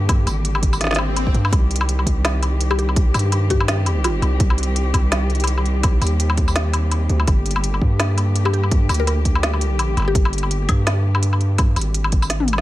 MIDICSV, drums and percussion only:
0, 0, Header, 1, 2, 480
1, 0, Start_track
1, 0, Key_signature, -3, "minor"
1, 0, Tempo, 359281
1, 119, Time_signature, 4, 2, 24, 8
1, 16850, End_track
2, 0, Start_track
2, 0, Title_t, "Drums"
2, 119, Note_on_c, 9, 36, 120
2, 120, Note_on_c, 9, 42, 82
2, 120, Note_on_c, 9, 77, 83
2, 253, Note_off_c, 9, 36, 0
2, 254, Note_off_c, 9, 42, 0
2, 254, Note_off_c, 9, 77, 0
2, 359, Note_on_c, 9, 42, 51
2, 359, Note_on_c, 9, 54, 38
2, 359, Note_on_c, 9, 77, 58
2, 493, Note_off_c, 9, 42, 0
2, 493, Note_off_c, 9, 54, 0
2, 493, Note_off_c, 9, 77, 0
2, 599, Note_on_c, 9, 42, 80
2, 733, Note_off_c, 9, 42, 0
2, 735, Note_on_c, 9, 77, 83
2, 838, Note_on_c, 9, 36, 58
2, 838, Note_on_c, 9, 42, 68
2, 869, Note_off_c, 9, 77, 0
2, 972, Note_off_c, 9, 36, 0
2, 972, Note_off_c, 9, 42, 0
2, 975, Note_on_c, 9, 54, 40
2, 975, Note_on_c, 9, 77, 61
2, 1079, Note_on_c, 9, 38, 56
2, 1079, Note_on_c, 9, 42, 83
2, 1109, Note_off_c, 9, 54, 0
2, 1109, Note_off_c, 9, 77, 0
2, 1123, Note_off_c, 9, 38, 0
2, 1123, Note_on_c, 9, 38, 66
2, 1159, Note_off_c, 9, 38, 0
2, 1159, Note_on_c, 9, 38, 74
2, 1212, Note_off_c, 9, 42, 0
2, 1213, Note_off_c, 9, 38, 0
2, 1213, Note_on_c, 9, 38, 83
2, 1236, Note_off_c, 9, 38, 0
2, 1236, Note_on_c, 9, 38, 92
2, 1265, Note_on_c, 9, 42, 69
2, 1282, Note_off_c, 9, 38, 0
2, 1282, Note_on_c, 9, 38, 98
2, 1317, Note_on_c, 9, 77, 87
2, 1398, Note_off_c, 9, 42, 0
2, 1415, Note_off_c, 9, 38, 0
2, 1450, Note_off_c, 9, 77, 0
2, 1556, Note_on_c, 9, 42, 83
2, 1556, Note_on_c, 9, 77, 56
2, 1690, Note_off_c, 9, 42, 0
2, 1690, Note_off_c, 9, 77, 0
2, 1694, Note_on_c, 9, 36, 60
2, 1797, Note_on_c, 9, 42, 38
2, 1828, Note_off_c, 9, 36, 0
2, 1930, Note_off_c, 9, 42, 0
2, 1935, Note_on_c, 9, 77, 85
2, 2038, Note_on_c, 9, 36, 127
2, 2039, Note_off_c, 9, 77, 0
2, 2039, Note_on_c, 9, 42, 80
2, 2039, Note_on_c, 9, 77, 56
2, 2172, Note_off_c, 9, 36, 0
2, 2173, Note_off_c, 9, 42, 0
2, 2173, Note_off_c, 9, 77, 0
2, 2281, Note_on_c, 9, 42, 53
2, 2347, Note_off_c, 9, 42, 0
2, 2347, Note_on_c, 9, 42, 71
2, 2417, Note_on_c, 9, 77, 90
2, 2481, Note_off_c, 9, 42, 0
2, 2522, Note_on_c, 9, 42, 85
2, 2550, Note_off_c, 9, 77, 0
2, 2656, Note_off_c, 9, 42, 0
2, 2658, Note_on_c, 9, 77, 55
2, 2760, Note_on_c, 9, 36, 61
2, 2762, Note_on_c, 9, 42, 71
2, 2792, Note_off_c, 9, 77, 0
2, 2893, Note_off_c, 9, 36, 0
2, 2896, Note_off_c, 9, 42, 0
2, 3001, Note_on_c, 9, 38, 124
2, 3001, Note_on_c, 9, 42, 89
2, 3001, Note_on_c, 9, 77, 91
2, 3135, Note_off_c, 9, 38, 0
2, 3135, Note_off_c, 9, 42, 0
2, 3135, Note_off_c, 9, 77, 0
2, 3241, Note_on_c, 9, 42, 73
2, 3241, Note_on_c, 9, 77, 60
2, 3374, Note_off_c, 9, 42, 0
2, 3374, Note_off_c, 9, 77, 0
2, 3481, Note_on_c, 9, 42, 84
2, 3615, Note_off_c, 9, 42, 0
2, 3618, Note_on_c, 9, 77, 87
2, 3723, Note_on_c, 9, 42, 42
2, 3751, Note_off_c, 9, 77, 0
2, 3857, Note_off_c, 9, 42, 0
2, 3858, Note_on_c, 9, 77, 57
2, 3960, Note_on_c, 9, 36, 127
2, 3960, Note_on_c, 9, 42, 87
2, 3992, Note_off_c, 9, 77, 0
2, 4094, Note_off_c, 9, 36, 0
2, 4094, Note_off_c, 9, 42, 0
2, 4200, Note_on_c, 9, 42, 51
2, 4200, Note_on_c, 9, 54, 37
2, 4200, Note_on_c, 9, 77, 88
2, 4266, Note_off_c, 9, 42, 0
2, 4266, Note_on_c, 9, 42, 71
2, 4334, Note_off_c, 9, 54, 0
2, 4334, Note_off_c, 9, 77, 0
2, 4400, Note_off_c, 9, 42, 0
2, 4438, Note_on_c, 9, 42, 87
2, 4438, Note_on_c, 9, 77, 55
2, 4571, Note_off_c, 9, 42, 0
2, 4571, Note_off_c, 9, 77, 0
2, 4679, Note_on_c, 9, 42, 69
2, 4680, Note_on_c, 9, 36, 65
2, 4812, Note_off_c, 9, 42, 0
2, 4813, Note_off_c, 9, 36, 0
2, 4816, Note_on_c, 9, 77, 82
2, 4920, Note_on_c, 9, 38, 127
2, 4920, Note_on_c, 9, 42, 87
2, 4950, Note_off_c, 9, 77, 0
2, 5054, Note_off_c, 9, 38, 0
2, 5054, Note_off_c, 9, 42, 0
2, 5161, Note_on_c, 9, 42, 71
2, 5161, Note_on_c, 9, 77, 59
2, 5294, Note_off_c, 9, 42, 0
2, 5294, Note_off_c, 9, 77, 0
2, 5402, Note_on_c, 9, 42, 85
2, 5402, Note_on_c, 9, 77, 80
2, 5536, Note_off_c, 9, 42, 0
2, 5536, Note_off_c, 9, 77, 0
2, 5642, Note_on_c, 9, 42, 41
2, 5642, Note_on_c, 9, 77, 57
2, 5776, Note_off_c, 9, 42, 0
2, 5776, Note_off_c, 9, 77, 0
2, 5878, Note_on_c, 9, 42, 81
2, 5879, Note_on_c, 9, 36, 127
2, 6012, Note_off_c, 9, 36, 0
2, 6012, Note_off_c, 9, 42, 0
2, 6016, Note_on_c, 9, 77, 78
2, 6119, Note_on_c, 9, 42, 52
2, 6149, Note_off_c, 9, 77, 0
2, 6185, Note_off_c, 9, 42, 0
2, 6185, Note_on_c, 9, 42, 70
2, 6319, Note_off_c, 9, 42, 0
2, 6359, Note_on_c, 9, 42, 86
2, 6493, Note_off_c, 9, 42, 0
2, 6598, Note_on_c, 9, 36, 67
2, 6600, Note_on_c, 9, 42, 70
2, 6600, Note_on_c, 9, 77, 77
2, 6732, Note_off_c, 9, 36, 0
2, 6734, Note_off_c, 9, 42, 0
2, 6734, Note_off_c, 9, 77, 0
2, 6838, Note_on_c, 9, 38, 127
2, 6838, Note_on_c, 9, 42, 85
2, 6838, Note_on_c, 9, 77, 56
2, 6971, Note_off_c, 9, 38, 0
2, 6971, Note_off_c, 9, 42, 0
2, 6971, Note_off_c, 9, 77, 0
2, 7078, Note_on_c, 9, 42, 32
2, 7147, Note_off_c, 9, 42, 0
2, 7147, Note_on_c, 9, 42, 40
2, 7213, Note_off_c, 9, 42, 0
2, 7213, Note_on_c, 9, 42, 48
2, 7265, Note_off_c, 9, 42, 0
2, 7265, Note_on_c, 9, 42, 60
2, 7265, Note_on_c, 9, 77, 79
2, 7314, Note_off_c, 9, 42, 0
2, 7314, Note_on_c, 9, 42, 83
2, 7398, Note_off_c, 9, 77, 0
2, 7448, Note_off_c, 9, 42, 0
2, 7450, Note_on_c, 9, 77, 55
2, 7556, Note_on_c, 9, 42, 40
2, 7583, Note_off_c, 9, 77, 0
2, 7690, Note_off_c, 9, 42, 0
2, 7794, Note_on_c, 9, 42, 82
2, 7794, Note_on_c, 9, 77, 78
2, 7798, Note_on_c, 9, 36, 127
2, 7928, Note_off_c, 9, 42, 0
2, 7928, Note_off_c, 9, 77, 0
2, 7931, Note_off_c, 9, 36, 0
2, 8037, Note_on_c, 9, 42, 50
2, 8037, Note_on_c, 9, 54, 36
2, 8037, Note_on_c, 9, 77, 52
2, 8104, Note_off_c, 9, 42, 0
2, 8104, Note_on_c, 9, 42, 66
2, 8171, Note_off_c, 9, 54, 0
2, 8171, Note_off_c, 9, 77, 0
2, 8238, Note_off_c, 9, 42, 0
2, 8280, Note_on_c, 9, 42, 84
2, 8413, Note_on_c, 9, 77, 80
2, 8414, Note_off_c, 9, 42, 0
2, 8517, Note_on_c, 9, 42, 66
2, 8518, Note_on_c, 9, 36, 66
2, 8546, Note_off_c, 9, 77, 0
2, 8650, Note_off_c, 9, 42, 0
2, 8652, Note_off_c, 9, 36, 0
2, 8655, Note_on_c, 9, 54, 37
2, 8655, Note_on_c, 9, 77, 55
2, 8759, Note_on_c, 9, 38, 127
2, 8759, Note_on_c, 9, 42, 84
2, 8789, Note_off_c, 9, 54, 0
2, 8789, Note_off_c, 9, 77, 0
2, 8892, Note_off_c, 9, 38, 0
2, 8892, Note_off_c, 9, 42, 0
2, 8998, Note_on_c, 9, 42, 69
2, 8998, Note_on_c, 9, 77, 79
2, 9131, Note_off_c, 9, 42, 0
2, 9131, Note_off_c, 9, 77, 0
2, 9238, Note_on_c, 9, 42, 81
2, 9238, Note_on_c, 9, 77, 50
2, 9372, Note_off_c, 9, 42, 0
2, 9372, Note_off_c, 9, 77, 0
2, 9479, Note_on_c, 9, 42, 39
2, 9612, Note_off_c, 9, 42, 0
2, 9615, Note_on_c, 9, 77, 74
2, 9719, Note_off_c, 9, 77, 0
2, 9719, Note_on_c, 9, 42, 78
2, 9719, Note_on_c, 9, 77, 50
2, 9721, Note_on_c, 9, 36, 124
2, 9853, Note_off_c, 9, 42, 0
2, 9853, Note_off_c, 9, 77, 0
2, 9854, Note_off_c, 9, 36, 0
2, 9962, Note_on_c, 9, 42, 50
2, 10029, Note_off_c, 9, 42, 0
2, 10029, Note_on_c, 9, 42, 65
2, 10099, Note_on_c, 9, 77, 82
2, 10163, Note_off_c, 9, 42, 0
2, 10203, Note_on_c, 9, 42, 81
2, 10233, Note_off_c, 9, 77, 0
2, 10337, Note_off_c, 9, 42, 0
2, 10340, Note_on_c, 9, 77, 51
2, 10442, Note_on_c, 9, 36, 62
2, 10474, Note_off_c, 9, 77, 0
2, 10576, Note_off_c, 9, 36, 0
2, 10682, Note_on_c, 9, 38, 127
2, 10682, Note_on_c, 9, 42, 81
2, 10682, Note_on_c, 9, 77, 83
2, 10816, Note_off_c, 9, 38, 0
2, 10816, Note_off_c, 9, 42, 0
2, 10816, Note_off_c, 9, 77, 0
2, 10924, Note_on_c, 9, 42, 69
2, 10924, Note_on_c, 9, 77, 54
2, 11057, Note_off_c, 9, 42, 0
2, 11057, Note_off_c, 9, 77, 0
2, 11163, Note_on_c, 9, 42, 80
2, 11297, Note_off_c, 9, 42, 0
2, 11299, Note_on_c, 9, 77, 79
2, 11405, Note_on_c, 9, 42, 36
2, 11432, Note_off_c, 9, 77, 0
2, 11537, Note_on_c, 9, 77, 53
2, 11539, Note_off_c, 9, 42, 0
2, 11643, Note_on_c, 9, 36, 122
2, 11643, Note_on_c, 9, 42, 78
2, 11670, Note_off_c, 9, 77, 0
2, 11777, Note_off_c, 9, 36, 0
2, 11777, Note_off_c, 9, 42, 0
2, 11882, Note_on_c, 9, 42, 48
2, 11882, Note_on_c, 9, 54, 39
2, 11882, Note_on_c, 9, 77, 84
2, 11949, Note_off_c, 9, 42, 0
2, 11949, Note_on_c, 9, 42, 62
2, 12015, Note_off_c, 9, 54, 0
2, 12015, Note_off_c, 9, 77, 0
2, 12083, Note_off_c, 9, 42, 0
2, 12122, Note_on_c, 9, 42, 79
2, 12122, Note_on_c, 9, 77, 54
2, 12255, Note_off_c, 9, 42, 0
2, 12255, Note_off_c, 9, 77, 0
2, 12361, Note_on_c, 9, 42, 67
2, 12362, Note_on_c, 9, 36, 60
2, 12495, Note_off_c, 9, 42, 0
2, 12496, Note_off_c, 9, 36, 0
2, 12498, Note_on_c, 9, 77, 82
2, 12601, Note_on_c, 9, 38, 124
2, 12601, Note_on_c, 9, 42, 79
2, 12631, Note_off_c, 9, 77, 0
2, 12735, Note_off_c, 9, 38, 0
2, 12735, Note_off_c, 9, 42, 0
2, 12739, Note_on_c, 9, 77, 54
2, 12843, Note_on_c, 9, 42, 67
2, 12873, Note_off_c, 9, 77, 0
2, 12976, Note_off_c, 9, 42, 0
2, 13081, Note_on_c, 9, 42, 75
2, 13081, Note_on_c, 9, 77, 80
2, 13215, Note_off_c, 9, 42, 0
2, 13215, Note_off_c, 9, 77, 0
2, 13322, Note_on_c, 9, 42, 39
2, 13322, Note_on_c, 9, 77, 53
2, 13355, Note_off_c, 9, 77, 0
2, 13355, Note_on_c, 9, 77, 43
2, 13389, Note_off_c, 9, 77, 0
2, 13389, Note_on_c, 9, 77, 35
2, 13455, Note_off_c, 9, 42, 0
2, 13523, Note_off_c, 9, 77, 0
2, 13561, Note_on_c, 9, 36, 120
2, 13564, Note_on_c, 9, 42, 78
2, 13694, Note_off_c, 9, 36, 0
2, 13697, Note_off_c, 9, 42, 0
2, 13698, Note_on_c, 9, 77, 85
2, 13801, Note_on_c, 9, 42, 51
2, 13832, Note_off_c, 9, 77, 0
2, 13869, Note_off_c, 9, 42, 0
2, 13869, Note_on_c, 9, 42, 64
2, 13935, Note_on_c, 9, 77, 56
2, 14003, Note_off_c, 9, 42, 0
2, 14040, Note_on_c, 9, 42, 81
2, 14069, Note_off_c, 9, 77, 0
2, 14174, Note_off_c, 9, 42, 0
2, 14278, Note_on_c, 9, 42, 68
2, 14278, Note_on_c, 9, 77, 81
2, 14281, Note_on_c, 9, 36, 61
2, 14412, Note_off_c, 9, 42, 0
2, 14412, Note_off_c, 9, 77, 0
2, 14415, Note_off_c, 9, 36, 0
2, 14520, Note_on_c, 9, 38, 122
2, 14520, Note_on_c, 9, 42, 83
2, 14520, Note_on_c, 9, 77, 57
2, 14653, Note_off_c, 9, 38, 0
2, 14653, Note_off_c, 9, 42, 0
2, 14653, Note_off_c, 9, 77, 0
2, 14893, Note_on_c, 9, 77, 87
2, 14999, Note_on_c, 9, 42, 80
2, 15027, Note_off_c, 9, 77, 0
2, 15132, Note_off_c, 9, 42, 0
2, 15135, Note_on_c, 9, 77, 58
2, 15239, Note_on_c, 9, 42, 37
2, 15269, Note_off_c, 9, 77, 0
2, 15373, Note_off_c, 9, 42, 0
2, 15476, Note_on_c, 9, 42, 81
2, 15476, Note_on_c, 9, 77, 85
2, 15480, Note_on_c, 9, 36, 122
2, 15610, Note_off_c, 9, 42, 0
2, 15610, Note_off_c, 9, 77, 0
2, 15613, Note_off_c, 9, 36, 0
2, 15716, Note_on_c, 9, 42, 53
2, 15716, Note_on_c, 9, 54, 40
2, 15716, Note_on_c, 9, 77, 60
2, 15784, Note_off_c, 9, 42, 0
2, 15784, Note_on_c, 9, 42, 69
2, 15849, Note_off_c, 9, 54, 0
2, 15849, Note_off_c, 9, 77, 0
2, 15918, Note_off_c, 9, 42, 0
2, 15958, Note_on_c, 9, 42, 82
2, 16091, Note_on_c, 9, 77, 82
2, 16092, Note_off_c, 9, 42, 0
2, 16194, Note_on_c, 9, 42, 68
2, 16199, Note_on_c, 9, 36, 63
2, 16225, Note_off_c, 9, 77, 0
2, 16327, Note_off_c, 9, 42, 0
2, 16331, Note_on_c, 9, 54, 40
2, 16331, Note_on_c, 9, 77, 58
2, 16332, Note_off_c, 9, 36, 0
2, 16431, Note_on_c, 9, 38, 65
2, 16431, Note_on_c, 9, 42, 83
2, 16465, Note_off_c, 9, 54, 0
2, 16465, Note_off_c, 9, 77, 0
2, 16565, Note_off_c, 9, 38, 0
2, 16565, Note_off_c, 9, 42, 0
2, 16570, Note_on_c, 9, 48, 59
2, 16671, Note_on_c, 9, 42, 71
2, 16703, Note_off_c, 9, 48, 0
2, 16741, Note_on_c, 9, 77, 85
2, 16804, Note_off_c, 9, 42, 0
2, 16809, Note_on_c, 9, 38, 72
2, 16850, Note_off_c, 9, 38, 0
2, 16850, Note_off_c, 9, 77, 0
2, 16850, End_track
0, 0, End_of_file